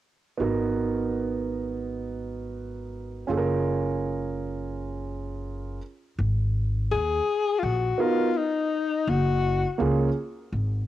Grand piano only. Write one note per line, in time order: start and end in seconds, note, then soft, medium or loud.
0.38 3.24 B3 medium
0.38 3.25 D#4 medium
0.38 3.25 F#4 medium
0.42 3.26 A#4 medium
3.27 5.77 C#4 medium
3.27 5.78 F4 medium
3.27 5.78 G#4 medium
3.31 3.39 A4 medium
3.37 5.82 A#4 medium
7.98 8.27 B3 medium
7.98 8.27 D#4 medium
7.98 8.28 F#4 medium
7.98 8.28 A#4 medium
9.78 10.08 A#3 medium
9.78 10.08 C#4 medium
9.78 10.08 F4 soft
9.78 10.09 G#4 medium